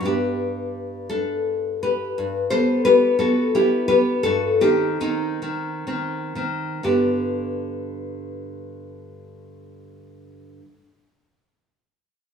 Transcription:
0.00 2.11 G2 medium
0.00 2.13 G3 medium
0.05 2.14 B3 medium
0.05 1.07 D4 medium
0.05 1.06 G4 loud
1.09 1.78 D4 medium
1.09 1.79 A4 loud
1.83 2.48 G4 medium
1.83 2.49 B4 medium
2.18 2.51 G2 medium
2.50 2.84 G3 medium
2.50 2.84 B3 medium
2.50 2.83 A4 medium
2.50 2.83 C5 loud
2.85 3.17 G3 medium
2.85 3.18 B3 medium
2.85 3.17 G4 medium
2.85 3.18 B4 loud
3.19 3.54 G3 medium
3.19 3.54 B3 medium
3.19 3.51 F#4 medium
3.19 3.52 A4 loud
3.55 3.87 G3 medium
3.55 3.87 B3 medium
3.55 3.87 E4 medium
3.55 3.87 G4 loud
3.88 4.20 G3 medium
3.88 4.20 B3 medium
3.88 4.22 G4 medium
3.88 4.22 B4 loud
4.23 4.61 G2 medium
4.23 4.59 F#4 medium
4.23 4.60 A4 loud
4.61 4.99 D#3 medium
4.61 5.00 C4 medium
4.61 4.98 D#4 medium
4.61 4.99 G4 loud
5.00 5.41 D#3 medium
5.00 5.40 C4 medium
5.00 5.41 D#4 loud
5.42 5.86 D#3 medium
5.42 5.86 C4 medium
5.87 6.34 D#3 medium
5.87 6.35 C4 medium
6.35 6.80 D#3 medium
6.35 6.81 C4 medium
6.83 10.60 G2 medium
6.83 10.60 D3 medium
6.83 10.60 B3 medium
6.83 10.60 D4 medium
6.83 10.61 G4 medium

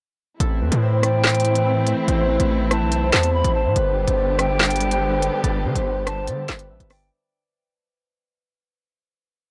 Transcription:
0.40 0.63 A1 loud
0.40 3.73 E3 medium
0.40 3.73 A3 medium
0.40 3.73 C4 medium
0.40 3.73 E4 medium
0.40 1.66 A4 medium
0.40 closed hi-hat medium
0.61 0.71 E2 loud
0.61 0.88 B4 medium
0.72 1.94 A2 loud
0.72 closed hi-hat medium
0.82 1.24 C5 medium
1.03 2.88 D5 medium
1.03 2.04 G5 medium
1.03 cross-stick medium
1.03 closed hi-hat medium
1.24 snare loud
1.24 clap loud
1.24 closed hi-hat medium
1.29 closed hi-hat medium
1.35 closed hi-hat medium
1.40 closed hi-hat medium
1.45 closed hi-hat medium
1.55 2.14 B4 medium
1.55 closed hi-hat medium
1.66 2.49 A4 medium
1.87 closed hi-hat medium
2.08 2.38 A1 loud
2.08 2.35 C5 medium
2.08 closed hi-hat medium
2.29 2.71 B4 medium
2.40 2.83 A1 loud
2.40 closed hi-hat medium
2.50 3.23 A4 medium
2.71 2.98 B4 medium
2.71 3.11 A5 medium
2.71 cross-stick medium
2.71 closed hi-hat medium
2.82 3.11 B1 loud
2.92 3.54 C5 medium
2.92 closed hi-hat loud
3.12 3.43 E2 loud
3.12 3.33 A5 medium
3.12 snare loud
3.12 clap loud
3.12 closed hi-hat medium
3.23 5.43 A4 medium
3.23 closed hi-hat medium
3.34 3.54 B5 medium
3.44 3.67 A1 loud
3.44 closed hi-hat medium
3.55 3.82 C5 medium
3.55 3.75 A5 medium
3.65 3.75 A2 loud
3.76 4.06 G1 loud
3.76 7.08 D3 medium
3.76 7.08 G3 medium
3.76 7.08 B3 medium
3.76 7.08 G4 medium
3.76 4.03 B4 loud
3.76 closed hi-hat medium
3.96 4.91 C5 medium
4.07 5.29 G1 loud
4.07 closed hi-hat medium
4.18 4.59 D5 medium
4.39 6.11 E5 medium
4.39 5.40 G5 loud
4.39 cross-stick medium
4.39 closed hi-hat medium
4.60 5.43 D5 medium
4.60 snare loud
4.60 clap loud
4.60 closed hi-hat medium
4.65 closed hi-hat medium
4.70 closed hi-hat medium
4.76 closed hi-hat medium
4.80 closed hi-hat medium
4.91 5.08 C5 medium
4.91 closed hi-hat medium
5.02 5.71 B4 medium
5.22 closed hi-hat medium
5.43 5.66 G1 loud
5.43 6.27 D5 loud
5.43 closed hi-hat medium
5.65 5.75 D3 loud
5.65 5.92 C5 medium
5.75 6.29 G1 loud
5.75 closed hi-hat medium
5.86 6.13 B4 medium
6.07 6.65 C5 medium
6.07 6.27 A5 medium
6.07 cross-stick medium
6.07 closed hi-hat medium
6.27 6.48 D3 loud
6.27 6.91 D5 medium
6.27 closed hi-hat medium
6.48 6.71 G1 loud
6.48 snare loud
6.48 clap loud
6.48 closed hi-hat medium
6.59 8.64 B4 medium
6.59 closed hi-hat medium
6.70 6.80 A1 loud
6.70 8.42 E5 medium
6.80 7.10 G1 loud
6.80 closed hi-hat medium
6.90 8.76 D5 medium
6.90 7.11 G5 medium
6.90 cross-stick medium
6.90 open hi-hat medium

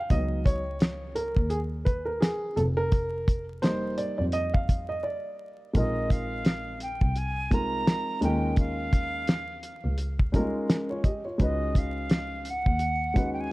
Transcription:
0.00 0.11 F5 medium
0.10 1.33 C#2 medium
0.10 0.59 F#3 medium
0.10 0.60 B3 medium
0.10 0.60 D#4 medium
0.10 0.43 D#5 loud
0.10 kick loud
0.10 closed hi-hat medium
0.45 1.18 C#5 medium
0.45 kick loud
0.45 closed hi-hat medium
0.81 snare loud
0.81 closed hi-hat medium
1.15 1.49 A#4 medium
1.15 closed hi-hat medium
1.36 2.18 D#2 medium
1.36 kick medium
1.50 1.58 G#4 medium
1.50 closed hi-hat medium
1.85 2.07 B4 medium
1.85 kick medium
1.85 closed hi-hat medium
2.05 2.22 A#4 medium
2.21 2.58 G#4 medium
2.21 snare loud
2.21 closed hi-hat loud
2.56 3.93 F1 medium
2.56 2.61 A4 medium
2.56 closed hi-hat medium
2.77 3.44 A#4 loud
2.92 kick loud
2.92 closed hi-hat medium
3.28 kick medium
3.28 closed hi-hat medium
3.62 5.71 G3 medium
3.62 5.71 A#3 medium
3.62 5.71 D#4 medium
3.62 3.99 C5 medium
3.62 snare loud
3.62 closed hi-hat medium
3.98 4.17 D5 medium
3.98 closed hi-hat medium
4.18 5.00 F2 medium
4.18 4.23 D5 medium
4.32 4.52 D#5 medium
4.32 closed hi-hat medium
4.54 4.90 F5 medium
4.54 kick medium
4.69 kick medium
4.69 closed hi-hat medium
4.89 5.04 D#5 medium
5.03 5.70 D5 medium
5.73 6.97 A#1 medium
5.73 6.82 G#3 medium
5.73 6.82 C4 medium
5.73 6.83 D#4 medium
5.73 6.83 F4 medium
5.73 6.83 A#4 medium
5.73 6.13 D#5 medium
5.73 kick loud
5.73 closed hi-hat medium
6.10 6.81 F5 loud
6.10 kick medium
6.10 closed hi-hat medium
6.45 snare loud
6.45 closed hi-hat medium
6.80 7.19 G5 medium
6.80 closed hi-hat medium
7.01 7.83 C2 medium
7.01 kick medium
7.16 7.55 G#5 loud
7.16 closed hi-hat medium
7.51 8.19 G#3 medium
7.51 8.22 C4 medium
7.51 8.21 D#4 medium
7.51 8.22 F4 medium
7.51 8.23 A#4 medium
7.51 8.23 A#5 loud
7.51 kick medium
7.51 closed hi-hat medium
7.87 snare loud
7.87 closed hi-hat loud
8.21 9.57 D#2 medium
8.21 9.35 G#3 medium
8.21 9.36 C#4 medium
8.21 9.36 D#4 medium
8.21 9.37 F4 medium
8.21 9.37 A#4 medium
8.21 8.56 G5 medium
8.21 closed hi-hat medium
8.56 9.95 F5 loud
8.56 kick medium
8.56 closed hi-hat medium
8.93 kick medium
8.93 closed hi-hat medium
9.27 snare loud
9.27 closed hi-hat medium
9.63 closed hi-hat medium
9.84 10.43 C#2 medium
9.98 closed hi-hat medium
10.19 kick medium
10.32 10.40 G3 medium
10.32 10.68 C#4 medium
10.32 10.69 D#4 medium
10.32 10.70 F4 medium
10.32 10.67 A#4 medium
10.32 kick medium
10.32 closed hi-hat medium
10.39 11.18 G#3 medium
10.69 10.89 C#4 soft
10.69 10.88 A#4 medium
10.69 snare loud
10.69 closed hi-hat loud
10.90 11.04 F4 medium
10.90 11.04 C#5 medium
11.04 11.24 G4 medium
11.04 11.24 D#5 medium
11.04 kick medium
11.04 closed hi-hat medium
11.25 11.59 F4 medium
11.25 11.58 C#5 medium
11.38 12.62 C#2 medium
11.38 12.46 G#3 medium
11.38 12.47 C#4 medium
11.38 12.47 D#4 medium
11.38 12.48 F#4 medium
11.38 12.48 B4 medium
11.38 kick loud
11.38 closed hi-hat medium
11.42 11.79 D#5 medium
11.75 12.51 F5 medium
11.75 kick medium
11.75 closed hi-hat medium
12.10 snare loud
12.10 closed hi-hat medium
12.45 closed hi-hat medium
12.49 13.32 F#5 medium
12.66 13.48 D#2 medium
12.66 kick medium
12.79 closed hi-hat medium
13.14 13.52 G#3 medium
13.14 13.52 C#4 medium
13.14 13.52 D#4 medium
13.14 13.52 F#4 medium
13.14 13.52 B4 medium
13.14 kick medium
13.14 closed hi-hat medium
13.33 13.42 G5 medium
13.40 13.52 G#5 medium

